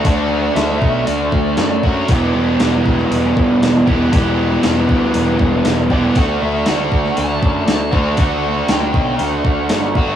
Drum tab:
HH |o---o---o---o---|o---o---o---o---|o---o---o---o---|o---o---o---o---|
SD |----o-------o---|----o--o----o---|----o-------o---|----o--o----oo--|
BD |o-----o---o---o-|o-----o---o---o-|o-----o---o---o-|o-----o---o---o-|

HH |o---o---o---o---|
SD |----o-------o---|
BD |o-----o---o---o-|